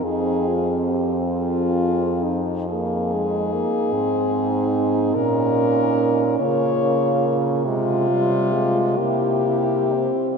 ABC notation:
X:1
M:12/8
L:1/8
Q:3/8=47
K:Ab
V:1 name="French horn"
A2 z F2 E A6 | B3 d2 z F3 G3 |]
V:2 name="French horn"
E F G A2 z E6- | E3 F3 F2 z =E E C |]
V:3 name="French horn"
C4- C z B, A, B, C3 | D3 B,3 A, G, A, B,2 z |]
V:4 name="French horn" clef=bass
F,,8 z A,,3 | B,,3 D,3 C,3 C,2 z |]